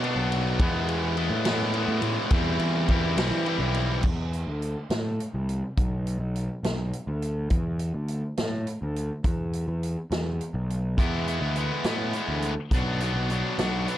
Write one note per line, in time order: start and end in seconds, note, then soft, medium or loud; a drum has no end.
0.00 0.15 B2 medium
0.00 0.59 B2 medium
0.00 0.59 F#3 medium
0.00 ride medium
0.04 0.61 B3 medium
0.04 0.59 D4 loud
0.16 0.57 B1 medium
0.32 ride medium
0.59 1.27 E2 loud
0.59 1.17 E3 loud
0.59 1.16 G#3 loud
0.59 1.18 B3 loud
0.59 1.18 E4 loud
0.59 kick loud
0.59 ride loud
0.89 ride medium
1.17 1.45 E3 medium
1.17 1.45 G#3 medium
1.17 1.46 B3 loud
1.17 1.47 E4 loud
1.17 ride medium
1.30 1.85 A2 medium
1.45 1.74 E3 medium
1.45 1.74 G#3 medium
1.45 1.75 B3 loud
1.45 1.76 E4 medium
1.45 snare loud
1.45 ride loud
1.74 2.32 E3 medium
1.74 2.31 G#3 medium
1.74 2.33 B3 medium
1.74 2.33 E4 medium
1.74 ride medium
1.88 2.02 A2 medium
2.02 2.16 A2 medium
2.02 ride medium
2.31 2.59 E2 loud
2.31 2.88 E3 loud
2.31 2.89 G3 loud
2.31 2.89 C4 loud
2.31 2.90 E4 loud
2.31 kick loud
2.31 ride loud
2.59 2.87 E2 medium
2.59 ride medium
2.88 3.15 E2 medium
2.88 3.17 E3 medium
2.88 3.18 G3 medium
2.88 3.18 C4 medium
2.88 3.19 E4 loud
2.88 kick medium
2.88 ride medium
3.16 3.30 B1 loud
3.16 3.46 E3 medium
3.16 3.47 G3 medium
3.16 3.47 C4 loud
3.16 3.47 E4 loud
3.16 snare loud
3.16 ride loud
3.31 3.58 E3 medium
3.46 4.03 E3 medium
3.46 4.04 G3 medium
3.46 4.04 C4 medium
3.46 4.04 E4 loud
3.46 ride medium
3.58 4.01 B1 medium
3.74 ride medium
4.03 4.45 E2 medium
4.03 kick loud
4.03 crash medium
4.33 closed hi-hat medium
4.47 4.75 D2 medium
4.62 closed hi-hat medium
4.90 5.18 A2 medium
4.90 snare loud
4.90 closed hi-hat medium
5.20 closed hi-hat medium
5.34 5.62 C2 medium
5.49 closed hi-hat medium
5.77 6.18 B1 medium
5.77 kick loud
5.77 closed hi-hat medium
6.07 closed hi-hat medium
6.20 6.48 B1 medium
6.36 closed hi-hat medium
6.63 6.91 B1 medium
6.63 snare loud
6.63 closed hi-hat medium
6.93 closed hi-hat medium
7.07 7.48 D2 medium
7.22 closed hi-hat medium
7.50 7.92 E2 medium
7.50 kick medium
7.50 closed hi-hat medium
7.79 closed hi-hat medium
7.94 8.22 D2 medium
8.08 closed hi-hat medium
8.37 8.65 A2 medium
8.37 snare loud
8.37 closed hi-hat medium
8.67 closed hi-hat medium
8.82 9.09 D2 medium
8.96 closed hi-hat medium
9.24 9.65 E2 medium
9.24 kick loud
9.24 closed hi-hat medium
9.53 closed hi-hat medium
9.68 9.95 E2 medium
9.83 closed hi-hat medium
10.11 10.38 E2 medium
10.11 snare loud
10.11 closed hi-hat medium
10.41 closed hi-hat medium
10.54 10.95 B1 medium
10.70 closed hi-hat medium
10.97 11.39 E2 medium
10.97 11.28 E3 medium
10.97 11.28 G#3 medium
10.97 11.27 B3 medium
10.97 11.27 E4 loud
10.97 kick loud
10.97 closed hi-hat medium
11.28 11.56 E3 medium
11.28 11.56 G#3 medium
11.28 11.57 B3 medium
11.28 11.57 E4 medium
11.28 closed hi-hat medium
11.41 11.69 D2 medium
11.56 11.86 E3 medium
11.56 11.85 G#3 medium
11.56 11.85 B3 medium
11.56 11.84 E4 medium
11.56 closed hi-hat medium
11.84 12.12 A2 medium
11.84 12.14 E3 medium
11.84 12.15 G#3 medium
11.84 12.15 B3 medium
11.84 12.14 E4 medium
11.84 snare loud
11.84 closed hi-hat medium
12.13 12.53 E3 medium
12.13 12.53 G#3 medium
12.13 12.53 B3 medium
12.13 12.53 E4 medium
12.13 closed hi-hat medium
12.28 12.56 D2 medium
12.42 closed hi-hat medium
12.71 13.12 B1 medium
12.71 13.01 B2 medium
12.71 13.02 F#3 medium
12.71 13.01 B3 medium
12.71 13.00 D4 medium
12.71 kick loud
12.71 closed hi-hat medium
13.00 13.30 B2 medium
13.00 13.30 F#3 medium
13.00 13.30 B3 medium
13.00 13.30 D4 medium
13.00 closed hi-hat medium
13.14 13.42 B1 medium
13.30 13.59 B2 medium
13.30 13.59 F#3 medium
13.30 13.59 B3 medium
13.30 13.58 D4 medium
13.30 closed hi-hat medium
13.58 13.86 B1 medium
13.58 13.87 B2 medium
13.58 13.88 F#3 medium
13.58 13.88 B3 medium
13.58 13.88 D4 medium
13.58 snare loud
13.58 closed hi-hat medium
13.88 13.98 B2 medium
13.88 13.98 F#3 medium
13.88 13.98 B3 medium
13.88 13.98 D4 medium
13.88 closed hi-hat medium